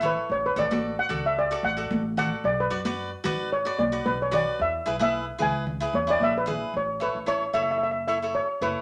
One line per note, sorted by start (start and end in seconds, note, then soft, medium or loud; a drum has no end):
0.00 0.18 A1 medium
0.00 0.29 E4 medium
0.00 0.29 A4 medium
0.00 0.30 C#5 medium
0.00 low conga medium
0.06 0.29 B4 medium
0.30 0.51 A1 medium
0.30 0.46 C#5 medium
0.46 0.58 B4 medium
0.56 0.98 A1 medium
0.56 0.65 F#4 medium
0.56 0.65 A4 medium
0.56 0.66 D5 medium
0.56 1.00 D5 loud
0.56 low conga medium
0.71 0.95 F#4 medium
0.71 0.95 A4 medium
0.71 0.96 D5 medium
0.71 high conga medium
0.99 1.26 F#5 loud
1.09 1.52 C#2 medium
1.09 1.34 F#4 medium
1.09 1.34 A4 medium
1.09 1.35 D5 medium
1.09 low conga medium
1.26 1.37 E5 medium
1.39 1.63 D5 medium
1.51 1.67 F#4 medium
1.51 1.67 A4 medium
1.51 1.67 D5 medium
1.63 1.84 A1 medium
1.63 2.17 F#5 loud
1.77 2.02 F#4 medium
1.77 2.02 A4 medium
1.77 2.02 D5 medium
1.91 2.33 A1 loud
1.91 high conga medium
2.17 2.44 F#4 medium
2.17 2.45 A4 medium
2.17 2.45 D5 medium
2.17 2.46 F#5 loud
2.17 low conga medium
2.44 2.65 B1 medium
2.44 2.58 D5 medium
2.60 3.10 B4 medium
2.70 3.13 F#2 medium
2.70 2.80 F#4 medium
2.70 2.80 B4 medium
2.70 2.80 D5 medium
2.85 3.09 F#4 medium
2.85 3.10 B4 medium
2.85 3.10 D5 medium
2.85 high conga medium
3.24 3.67 G#1 medium
3.24 3.49 F#4 medium
3.24 3.49 B4 medium
3.24 3.50 D5 loud
3.24 low conga medium
3.53 3.65 C#5 medium
3.65 3.81 F#4 medium
3.65 3.81 B4 medium
3.65 3.82 D5 medium
3.78 3.99 B1 medium
3.78 4.07 D5 medium
3.78 high conga medium
3.92 4.17 F#4 medium
3.92 4.17 B4 medium
3.92 4.17 D5 medium
4.06 4.47 B1 medium
4.06 4.20 B4 medium
4.06 high conga medium
4.22 4.34 C#5 medium
4.31 4.59 F#4 medium
4.31 4.59 B4 medium
4.31 4.60 D5 medium
4.31 4.58 D5 medium
4.31 low conga medium
4.59 4.80 E2 medium
4.59 5.01 E5 medium
4.86 5.28 B1 medium
4.86 4.95 E4 medium
4.86 4.95 G#4 medium
4.86 4.95 B4 medium
4.99 5.24 E4 medium
4.99 5.24 G#4 medium
4.99 5.25 B4 medium
4.99 5.38 E5 loud
4.99 high conga medium
5.38 5.82 C#2 medium
5.38 5.64 E4 medium
5.38 5.64 G#4 medium
5.38 5.64 B4 medium
5.38 5.54 G#5 medium
5.38 low conga medium
5.67 low conga medium
5.80 5.96 E4 medium
5.80 5.96 G#4 medium
5.80 5.97 B4 medium
5.93 6.14 E2 medium
5.93 6.01 C#5 medium
5.93 high conga medium
6.07 6.32 E4 medium
6.07 6.32 G#4 medium
6.07 6.32 B4 medium
6.07 6.22 D5 loud
6.20 6.62 A#1 medium
6.20 6.29 E5 loud
6.20 high conga medium
6.38 6.73 B4 medium
6.46 6.73 E4 medium
6.46 6.74 G#4 medium
6.46 6.74 B4 medium
6.46 low conga medium
6.74 7.06 A1 medium
6.74 7.03 C#5 medium
7.00 7.17 E4 medium
7.00 7.18 A4 medium
7.00 7.29 B4 medium
7.00 7.18 C#5 medium
7.15 7.46 A1 medium
7.26 7.44 E4 medium
7.26 7.44 A4 medium
7.26 7.40 C#5 loud
7.26 7.45 C#5 medium
7.53 8.38 F#1 medium
7.53 7.87 E4 medium
7.53 7.87 A4 medium
7.53 7.87 C#5 medium
7.53 7.62 E5 medium
7.63 7.70 E5 medium
7.71 7.77 E5 medium
7.78 7.82 E5 medium
7.83 7.90 E5 medium
7.91 8.00 E5 medium
8.08 8.17 E4 medium
8.08 8.17 A4 medium
8.08 8.17 C#5 medium
8.08 8.36 E5 medium
8.22 8.47 E4 medium
8.22 8.47 A4 medium
8.22 8.47 C#5 medium
8.35 8.47 C#5 medium
8.61 8.73 F#1 medium
8.61 8.82 E4 medium
8.61 8.82 A4 medium
8.61 8.82 B4 medium
8.61 8.82 C#5 medium